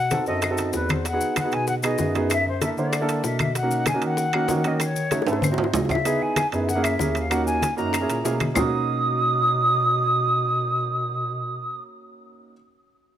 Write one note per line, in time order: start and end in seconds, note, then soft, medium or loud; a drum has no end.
0.00 0.21 B2 medium
0.00 0.24 F#5 loud
0.11 0.23 C4 medium
0.11 0.23 D#4 medium
0.11 0.23 F#4 medium
0.11 0.23 A4 medium
0.11 high bongo soft
0.11 high conga medium
0.11 high timbale medium
0.11 maracas medium
0.26 0.70 F#2 medium
0.26 0.44 C4 medium
0.26 0.44 D#4 medium
0.26 0.44 F#4 medium
0.26 0.44 A4 medium
0.26 0.71 D#5 medium
0.26 high bongo soft
0.26 high conga soft
0.26 maracas soft
0.42 high bongo medium
0.42 high conga soft
0.42 high timbale medium
0.42 claves medium
0.42 maracas medium
0.50 0.94 C4 medium
0.50 0.94 D#4 medium
0.50 0.94 F#4 medium
0.50 0.95 A4 medium
0.58 high bongo soft
0.58 high conga soft
0.58 high timbale medium
0.58 maracas medium
0.73 1.20 E2 medium
0.73 0.92 B4 medium
0.73 high bongo medium
0.73 low bongo medium
0.73 high conga soft
0.73 maracas medium
0.89 1.07 C5 medium
0.89 high bongo soft
0.89 high conga medium
0.89 high timbale medium
0.89 claves medium
0.89 maracas soft
1.05 1.37 F#5 loud
1.05 high bongo medium
1.05 high timbale medium
1.05 maracas medium
1.13 1.35 B3 medium
1.13 1.35 D#4 medium
1.13 1.35 F#4 medium
1.13 1.35 G#4 medium
1.21 high conga soft
1.21 maracas medium
1.36 1.55 F#5 medium
1.36 high bongo medium
1.36 high conga medium
1.36 high timbale medium
1.36 claves medium
1.36 maracas medium
1.44 1.72 B3 medium
1.44 1.72 D#4 medium
1.44 1.72 F#4 medium
1.44 1.72 G#4 medium
1.52 1.96 B2 medium
1.52 1.67 G#5 loud
1.52 high conga soft
1.52 high timbale medium
1.52 maracas soft
1.67 1.74 F#5 medium
1.67 high bongo medium
1.67 high conga soft
1.67 maracas medium
1.83 1.94 B3 medium
1.83 1.94 D#4 medium
1.83 1.95 F#4 medium
1.83 1.95 G#4 medium
1.83 2.13 D#5 medium
1.83 high conga soft
1.83 high timbale medium
1.83 claves medium
1.83 maracas medium
1.98 2.71 F#2 medium
1.98 2.10 B3 medium
1.98 2.10 D#4 medium
1.98 2.10 F#4 medium
1.98 2.11 G#4 medium
1.98 high bongo medium
1.98 low bongo medium
1.98 high conga medium
1.98 maracas medium
2.15 2.30 B3 medium
2.15 2.31 D#4 medium
2.15 2.31 F#4 medium
2.15 2.31 G#4 medium
2.15 high conga soft
2.15 high timbale medium
2.15 maracas soft
2.30 2.45 E5 medium
2.30 high bongo medium
2.30 high conga soft
2.30 high timbale medium
2.30 claves medium
2.30 maracas medium
2.47 2.61 C5 medium
2.47 high conga soft
2.61 2.72 A#3 medium
2.61 2.72 D4 soft
2.61 2.73 E4 medium
2.61 2.73 A4 medium
2.61 2.69 E5 medium
2.61 high bongo soft
2.61 high conga medium
2.61 high timbale medium
2.61 maracas medium
2.77 3.21 D3 medium
2.77 2.94 A#3 medium
2.77 2.94 D4 medium
2.77 2.94 E4 medium
2.77 2.94 C5 medium
2.77 3.22 D5 medium
2.77 high bongo soft
2.77 high conga soft
2.77 maracas soft
2.93 high bongo medium
2.93 high conga soft
2.93 high timbale medium
2.93 claves medium
2.93 maracas medium
3.01 3.45 A#3 medium
3.01 3.45 D4 medium
3.01 3.45 E4 medium
3.01 3.45 A4 medium
3.09 high bongo soft
3.09 high conga soft
3.09 high timbale medium
3.09 maracas medium
3.24 3.97 B2 medium
3.24 3.39 E5 medium
3.24 high bongo medium
3.24 low bongo medium
3.24 high conga soft
3.24 maracas medium
3.39 3.54 E5 medium
3.39 high bongo soft
3.39 high conga medium
3.39 high timbale medium
3.39 claves medium
3.39 maracas soft
3.55 3.85 F#5 medium
3.55 high bongo medium
3.55 high conga soft
3.55 high timbale medium
3.55 maracas medium
3.63 3.85 A#3 medium
3.63 3.85 C#4 medium
3.63 3.85 D#4 medium
3.63 3.85 F#4 medium
3.71 high conga soft
3.71 maracas medium
3.86 4.02 G#5 medium
3.86 high bongo medium
3.86 high conga medium
3.86 high timbale medium
3.86 claves medium
3.86 maracas medium
3.94 4.22 A#3 medium
3.94 4.22 C#4 medium
3.94 4.22 D#4 medium
3.94 4.22 F#4 medium
4.02 4.46 D#3 medium
4.02 4.69 F#5 loud
4.02 high conga soft
4.02 high timbale medium
4.02 maracas soft
4.17 high bongo medium
4.17 high conga soft
4.17 maracas medium
4.33 4.45 A#3 medium
4.33 4.45 C#4 medium
4.33 4.45 D#4 medium
4.33 4.45 F#4 medium
4.33 high conga soft
4.33 high timbale medium
4.33 claves medium
4.48 5.21 D#3 medium
4.48 4.60 A#3 medium
4.48 4.60 C#4 medium
4.48 4.60 D#4 medium
4.48 4.60 F#4 medium
4.48 high bongo medium
4.48 low bongo medium
4.48 high conga medium
4.48 low timbale medium
4.48 maracas medium
4.64 4.80 A#3 medium
4.64 4.80 C#4 medium
4.64 4.81 D#4 medium
4.64 4.81 F#4 medium
4.64 4.82 D#5 medium
4.64 high conga soft
4.64 high timbale medium
4.64 maracas soft
4.80 5.25 C#5 medium
4.80 high bongo medium
4.80 high conga soft
4.80 high timbale medium
4.80 claves medium
4.80 maracas medium
4.96 high conga soft
4.96 maracas medium
5.11 5.22 A3 medium
5.11 5.23 C#4 medium
5.11 5.23 D#4 medium
5.11 5.23 F#4 medium
5.11 high bongo medium
5.11 high conga medium
5.11 high timbale medium
5.11 maracas medium
5.22 high bongo medium
5.27 5.71 G#2 medium
5.27 5.43 A3 medium
5.27 5.43 C#4 medium
5.27 5.43 D#4 medium
5.27 5.43 A4 medium
5.27 5.72 C5 medium
5.27 high conga soft
5.27 high timbale medium
5.27 maracas soft
5.33 high bongo medium
5.42 high conga medium
5.42 high timbale medium
5.42 claves medium
5.42 maracas medium
5.51 5.95 C4 medium
5.51 5.95 D#4 medium
5.51 5.95 E4 medium
5.51 5.95 F#4 medium
5.51 low bongo medium
5.58 high conga medium
5.58 low timbale medium
5.64 low bongo medium
5.74 6.20 C#3 medium
5.74 5.80 D#5 medium
5.74 low bongo medium
5.74 low conga medium
5.74 low timbale loud
5.74 maracas medium
5.85 low bongo medium
5.89 6.23 E5 medium
5.89 low conga medium
5.89 low timbale medium
5.89 claves medium
5.89 maracas soft
5.95 low bongo medium
6.05 6.38 B3 medium
6.05 6.38 D#4 medium
6.05 6.38 E4 medium
6.05 6.39 G#4 medium
6.05 high bongo medium
6.05 high conga soft
6.05 high timbale medium
6.05 maracas medium
6.22 6.46 G#5 medium
6.22 high conga soft
6.36 high bongo medium
6.36 high conga medium
6.36 high timbale medium
6.36 claves medium
6.36 maracas medium
6.52 6.96 F#2 medium
6.52 6.68 B3 medium
6.52 6.68 D#4 medium
6.52 6.68 E4 medium
6.52 6.69 G#4 medium
6.52 high conga soft
6.52 high timbale medium
6.52 maracas soft
6.66 6.84 F#5 medium
6.66 high bongo medium
6.66 high conga soft
6.66 maracas medium
6.75 6.92 A#3 medium
6.75 6.92 C#4 medium
6.75 6.92 E4 medium
6.75 6.93 G#4 medium
6.82 7.19 E5 medium
6.82 high conga soft
6.82 high timbale medium
6.82 claves medium
6.82 maracas medium
6.99 7.72 D#2 medium
6.99 7.21 A#3 medium
6.99 7.21 C#4 medium
6.99 7.21 E4 medium
6.99 7.22 G#4 medium
6.99 high bongo medium
6.99 low bongo medium
6.99 high conga medium
6.99 maracas medium
7.15 high timbale medium
7.15 maracas soft
7.19 7.31 F5 medium
7.30 7.63 A#3 medium
7.30 7.63 C#4 medium
7.30 7.64 D#4 medium
7.30 7.64 F#4 medium
7.30 7.45 F#5 medium
7.30 high bongo medium
7.30 high conga soft
7.30 high timbale medium
7.30 claves medium
7.30 maracas medium
7.45 7.75 G#5 medium
7.45 high conga soft
7.45 maracas medium
7.62 high bongo medium
7.62 high conga medium
7.62 high timbale medium
7.62 maracas medium
7.77 8.06 F#2 medium
7.77 7.93 A#3 medium
7.77 7.93 C#4 medium
7.77 7.93 D#4 medium
7.77 7.93 F#4 medium
7.77 8.36 A#5 medium
7.77 high bongo soft
7.77 high conga soft
7.77 maracas soft
7.93 high bongo medium
7.93 high conga soft
7.93 high timbale medium
7.93 claves medium
7.93 maracas medium
8.01 8.17 A#3 medium
8.01 8.17 C#4 medium
8.01 8.18 E4 medium
8.01 8.18 G#4 medium
8.09 8.23 A#2 medium
8.09 high bongo soft
8.09 high conga soft
8.09 high timbale medium
8.09 maracas medium
8.24 8.52 B2 medium
8.24 8.46 A#3 medium
8.24 8.46 C#4 medium
8.24 8.46 E4 medium
8.24 8.47 G#4 medium
8.24 high bongo medium
8.24 low bongo medium
8.24 high conga soft
8.24 low timbale medium
8.24 maracas medium
8.40 high bongo soft
8.40 high conga medium
8.40 high timbale medium
8.40 claves medium
8.40 maracas soft
8.54 11.82 B2 medium
8.54 12.51 A#3 medium
8.54 12.52 C#4 medium
8.54 12.53 D#4 medium
8.54 11.82 D#6 medium
8.54 low bongo medium
8.54 low conga medium
8.54 low timbale medium
8.54 claves medium
8.54 maracas medium
8.58 12.53 F#4 medium